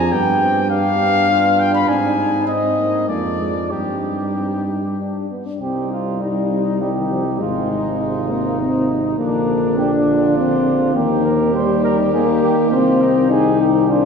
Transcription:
0.00 0.14 F2 medium
0.00 0.13 C4 medium
0.00 0.14 G#4 medium
0.00 0.14 G#5 medium
0.12 1.88 G2 medium
0.12 0.70 B3 medium
0.12 0.44 B3 medium
0.12 0.70 G4 medium
0.12 0.70 G5 medium
0.42 0.70 C4 medium
0.70 1.90 B3 medium
0.70 1.29 D4 medium
0.70 1.29 G4 soft
0.70 1.61 F5 medium
1.30 2.50 D4 medium
1.30 1.90 F4 medium
1.60 1.74 G5 medium
1.75 1.90 B5 medium
1.89 3.07 G#2 medium
1.89 2.48 C4 medium
1.89 2.48 D#4 medium
1.89 2.47 G#5 medium
2.47 3.12 C4 medium
2.47 2.62 C4 soft
2.47 3.08 D#4 soft
2.47 3.07 D#5 medium
2.78 3.11 A#3 soft
3.09 3.73 F2 soft
3.09 3.73 G#3 soft
3.09 3.40 A#3 soft
3.09 3.73 D4 soft
3.09 3.73 D5 medium
3.41 3.55 G#3 soft
3.71 5.30 G2 soft
3.71 5.27 G3 soft
3.71 4.29 C4 soft
3.71 4.69 D#4 soft
3.71 5.29 G4 soft
4.35 4.65 C4 soft
4.67 4.81 D#4 soft
4.98 5.29 D4 soft
4.98 5.28 D4 soft
5.30 5.47 B3 soft
5.46 5.62 D4 soft
5.60 7.42 C2 soft
5.60 7.37 G3 soft
5.60 6.20 C4 medium
5.60 9.15 D#4 soft
5.60 5.89 G4 soft
5.92 6.23 F4 soft
6.21 6.80 G3 medium
6.21 6.83 D#4 soft
6.81 6.88 G3 medium
6.81 7.40 G4 soft
6.97 7.10 D#3 soft
7.11 7.25 F3 medium
7.26 7.42 G3 medium
7.40 9.18 G#1 medium
7.40 9.15 C3 soft
7.40 8.32 G#3 medium
7.40 7.70 F4 soft
7.70 8.02 D#4 soft
8.01 8.30 F4 soft
8.30 8.59 A#3 medium
8.30 8.61 F4 soft
8.60 8.88 C4 medium
8.60 9.18 D#4 soft
9.18 10.92 A#1 medium
9.18 10.92 D3 soft
9.18 9.79 A#3 medium
9.18 9.77 D4 medium
9.18 10.93 D4 medium
9.77 10.36 D4 medium
9.77 9.91 G4 medium
10.08 10.97 F4 medium
10.37 10.94 C4 medium
10.95 12.42 D#2 medium
10.95 14.05 D#3 medium
10.95 11.53 A#3 medium
10.95 11.26 G4 medium
10.95 14.05 G4 medium
11.24 11.56 A#4 medium
11.54 12.12 G3 medium
11.54 11.83 C5 medium
11.84 11.97 A#4 medium
12.13 12.71 A#3 medium
12.13 12.26 G#4 medium
12.42 12.56 G4 medium
12.71 14.05 C2 medium
12.71 13.32 C4 medium
12.71 13.03 F4 medium
13.01 13.30 D#4 medium
13.30 13.88 D#4 medium
13.30 13.62 G#4 medium
13.60 13.92 G4 medium
13.89 14.05 D4 medium
13.89 14.05 F4 medium

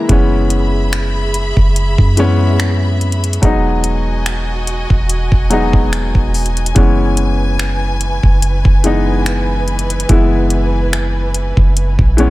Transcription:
0.00 0.09 E3 medium
0.00 0.09 G#3 medium
0.00 0.12 A#3 medium
0.00 0.11 E4 medium
0.09 1.53 F#1 loud
0.09 1.45 E3 medium
0.09 1.46 G#3 medium
0.09 1.46 B3 medium
0.09 1.47 C#4 medium
0.09 3.39 G#4 medium
0.09 3.39 E5 medium
0.09 3.39 B5 medium
0.09 kick loud
0.09 closed hi-hat medium
0.50 closed hi-hat medium
0.93 finger snap loud
0.93 closed hi-hat medium
1.34 closed hi-hat medium
1.57 1.97 F#1 loud
1.57 kick medium
1.76 closed hi-hat medium
1.98 3.39 F#2 medium
1.98 kick medium
2.17 3.20 E3 medium
2.17 3.21 G#3 medium
2.17 3.21 B3 medium
2.17 3.22 C#4 loud
2.17 closed hi-hat medium
2.60 finger snap loud
2.60 closed hi-hat medium
3.01 closed hi-hat soft
3.12 closed hi-hat medium
3.24 closed hi-hat medium
3.33 closed hi-hat medium
3.42 4.86 E1 loud
3.42 4.78 F#3 medium
3.42 4.79 G#3 medium
3.42 4.80 B3 medium
3.42 4.80 D#4 medium
3.42 6.73 F#4 medium
3.42 6.73 D#5 medium
3.42 12.30 G#5 medium
3.42 kick loud
3.42 closed hi-hat medium
3.84 closed hi-hat medium
4.26 finger snap loud
4.26 closed hi-hat medium
4.67 closed hi-hat medium
4.90 5.30 E1 medium
4.90 kick medium
5.09 closed hi-hat medium
5.32 5.72 E1 medium
5.32 kick medium
5.50 6.54 F#3 medium
5.50 6.54 G#3 medium
5.50 6.54 B3 medium
5.50 6.55 D#4 medium
5.50 closed hi-hat medium
5.73 6.13 E1 loud
5.73 kick medium
5.93 finger snap loud
5.93 closed hi-hat medium
6.15 6.73 E1 loud
6.15 kick medium
6.34 closed hi-hat soft
6.34 open hi-hat medium
6.46 closed hi-hat medium
6.57 closed hi-hat medium
6.66 closed hi-hat medium
6.75 8.19 F#1 loud
6.75 8.12 E3 medium
6.75 12.30 E3 medium
6.75 8.12 G#3 medium
6.75 8.13 B3 medium
6.75 8.13 C#4 medium
6.75 12.30 B4 medium
6.75 kick loud
6.75 closed hi-hat medium
7.17 closed hi-hat medium
7.59 finger snap loud
7.59 closed hi-hat medium
8.01 closed hi-hat medium
8.23 8.63 F#1 loud
8.23 kick medium
8.42 closed hi-hat medium
8.65 10.05 F#1 loud
8.65 kick medium
8.84 9.87 E3 medium
8.84 9.88 G#3 medium
8.84 9.88 B3 medium
8.84 9.88 D#4 medium
8.84 closed hi-hat medium
9.26 finger snap loud
9.26 closed hi-hat medium
9.68 closed hi-hat soft
9.79 closed hi-hat medium
9.90 closed hi-hat medium
10.00 closed hi-hat medium
10.09 11.53 F#1 loud
10.09 11.45 E3 medium
10.09 11.46 G#3 medium
10.09 11.46 B3 medium
10.09 11.47 E4 medium
10.09 kick loud
10.09 closed hi-hat medium
10.50 closed hi-hat medium
10.93 finger snap loud
10.93 closed hi-hat medium
11.34 closed hi-hat medium
11.57 11.97 F#1 loud
11.57 kick medium
11.77 closed hi-hat medium
11.99 12.30 A#1 loud
11.99 kick medium
12.17 12.30 E3 medium
12.17 12.30 G#3 medium
12.17 12.30 B3 medium
12.17 12.30 C#4 medium
12.17 closed hi-hat soft

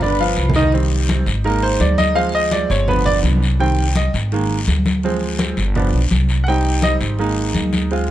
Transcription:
0.00 0.34 G1 loud
0.00 0.17 D3 medium
0.00 0.17 D4 medium
0.00 0.52 B4 medium
0.00 0.17 D5 medium
0.00 0.52 B5 medium
0.00 low conga medium
0.00 long guiro medium
0.20 0.49 F3 medium
0.20 0.49 F4 medium
0.20 0.49 F5 medium
0.36 1.21 C2 medium
0.36 short guiro medium
0.49 low conga loud
0.54 0.70 D#3 medium
0.54 0.70 D#4 medium
0.54 0.70 D#5 loud
0.54 short guiro medium
0.61 low conga medium
0.72 1.24 D#3 medium
0.72 1.24 G3 soft
0.72 1.25 C4 medium
0.72 high conga soft
0.72 long guiro medium
0.92 high conga soft
1.08 high conga loud
1.08 short guiro medium
1.26 1.77 G#1 loud
1.26 high conga soft
1.26 short guiro medium
1.44 2.13 G#3 medium
1.44 2.13 A#3 medium
1.44 2.13 D#4 medium
1.44 1.63 A#4 medium
1.44 high conga soft
1.44 long guiro medium
1.62 1.80 C5 loud
1.62 high conga soft
1.80 2.64 D2 loud
1.80 1.98 D5 medium
1.80 high conga medium
1.80 short guiro medium
1.98 2.16 D#5 loud
1.98 high conga medium
1.98 short guiro medium
2.15 2.84 F3 medium
2.15 2.84 G#3 medium
2.15 2.85 C4 medium
2.15 2.33 F5 loud
2.15 high conga soft
2.15 long guiro medium
2.34 2.52 D#5 loud
2.34 high conga soft
2.51 2.70 D5 medium
2.51 high conga medium
2.51 short guiro medium
2.70 3.20 G1 loud
2.70 2.88 C#5 medium
2.70 high conga soft
2.70 short guiro medium
2.88 3.39 D3 medium
2.88 3.40 F3 soft
2.88 3.40 B3 medium
2.88 3.06 B4 medium
2.88 high conga soft
2.88 low conga medium
2.88 long guiro medium
3.06 3.17 D5 loud
3.06 high conga soft
3.06 low conga medium
3.23 4.08 C2 loud
3.23 high conga medium
3.23 short guiro medium
3.43 short guiro medium
3.59 3.84 D#3 medium
3.59 3.84 G3 soft
3.59 3.84 C4 medium
3.59 3.94 G5 medium
3.59 high conga soft
3.59 long guiro medium
3.78 high conga soft
3.95 4.14 D#5 medium
3.95 high conga medium
3.95 short guiro medium
4.13 4.64 G#1 loud
4.13 high conga soft
4.13 short guiro medium
4.32 4.56 D#3 medium
4.32 4.56 G#3 medium
4.32 4.57 A#3 medium
4.32 high conga soft
4.32 long guiro medium
4.50 high conga soft
4.67 5.52 D2 loud
4.67 high conga medium
4.67 short guiro medium
4.86 high conga medium
4.86 short guiro medium
5.03 5.55 F3 medium
5.03 5.55 G#3 medium
5.03 5.56 C4 medium
5.03 high conga soft
5.03 long guiro medium
5.22 high conga soft
5.39 high conga medium
5.39 short guiro medium
5.57 5.91 G1 loud
5.57 high conga soft
5.57 short guiro medium
5.75 5.99 F3 medium
5.75 5.99 B3 soft
5.75 6.00 D4 medium
5.75 high conga soft
5.75 low conga medium
5.75 long guiro medium
5.93 6.10 B1 medium
5.93 high conga soft
6.11 6.95 C2 medium
6.11 high conga medium
6.11 short guiro medium
6.29 short guiro medium
6.44 7.16 G3 medium
6.44 6.46 F#5 medium
6.44 high conga soft
6.44 long guiro medium
6.48 7.16 C4 soft
6.48 7.17 D#4 medium
6.48 6.81 G5 medium
6.65 high conga soft
6.82 6.94 D#5 medium
6.82 high conga medium
6.82 short guiro medium
7.01 7.51 G#1 loud
7.01 high conga soft
7.01 short guiro medium
7.19 7.87 G#3 medium
7.19 7.88 A#3 medium
7.19 7.88 D#4 medium
7.19 high conga soft
7.19 long guiro medium
7.36 high conga soft
7.54 8.11 D2 medium
7.54 high conga medium
7.54 short guiro medium
7.73 high conga medium
7.73 short guiro medium
7.91 8.11 G#3 medium
7.91 8.11 C4 soft
7.91 8.11 F4 medium
7.91 high conga soft
7.91 long guiro medium

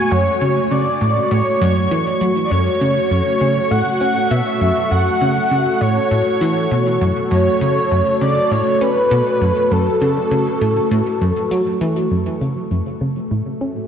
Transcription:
0.00 2.76 G#3 medium
0.00 12.10 A3 medium
0.00 12.11 F#4 medium
0.00 0.13 G#5 loud
0.00 12.12 C#6 medium
0.11 0.29 F#2 medium
0.11 0.73 C#5 loud
0.41 0.59 C#3 medium
0.71 0.89 C#3 medium
0.71 1.33 D5 medium
1.01 1.19 A2 medium
1.31 1.42 A2 medium
1.31 2.21 C#5 medium
1.61 1.88 F#2 loud
1.91 2.09 E3 medium
2.21 2.32 F#3 medium
2.44 2.53 D5 medium
2.51 2.69 F#2 medium
2.51 3.72 C#5 loud
2.72 12.14 A4 medium
2.81 2.99 C#3 medium
3.11 3.22 F#2 medium
3.41 3.59 C#3 medium
3.71 3.82 A2 medium
3.71 4.32 F#5 loud
4.01 4.19 C#4 medium
4.31 4.42 B2 loud
4.31 4.92 E5 loud
4.61 4.72 F#2 medium
4.91 5.09 F#2 medium
4.91 5.82 F#5 loud
5.21 5.39 C#3 medium
5.51 5.69 C#3 medium
5.81 5.99 A2 medium
5.81 7.01 C#5 medium
6.11 6.22 A2 medium
6.41 6.68 E3 loud
6.71 6.98 B2 medium
7.01 7.12 F#2 medium
7.31 7.49 F#2 medium
7.31 8.17 C#5 loud
7.61 7.79 C#3 medium
7.91 8.02 F#2 medium
8.21 8.39 C#3 medium
8.21 8.53 D5 loud
8.51 8.62 A2 medium
8.51 8.83 C#5 loud
8.81 8.99 C#4 medium
8.81 9.73 B4 loud
9.11 9.22 B2 loud
9.41 9.52 F#2 medium
9.71 9.89 F#2 medium
9.71 11.51 A4 medium
10.01 10.19 C#3 medium
10.31 10.49 C#3 medium
10.61 10.79 A2 medium
10.91 11.02 A2 medium
11.21 11.32 F#2 medium
11.51 11.62 F#3 medium
11.81 12.08 E3 medium
12.11 12.29 F#2 medium
12.11 13.87 A3 medium
12.41 12.59 C#3 medium
12.69 12.82 F#2 medium
12.69 13.87 F#4 medium
13.01 13.19 C#3 medium
13.23 13.87 G#4 medium
13.31 13.42 A2 medium
13.61 13.79 C#4 medium

